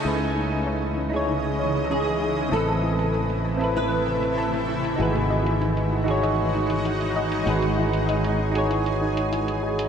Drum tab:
HH |-x-xxx-xx--xxx-x|xx-xxx-xxx-xxx-x|xx-xxx-xx--xxx-x|xx-xxx-xxx-xxx-x|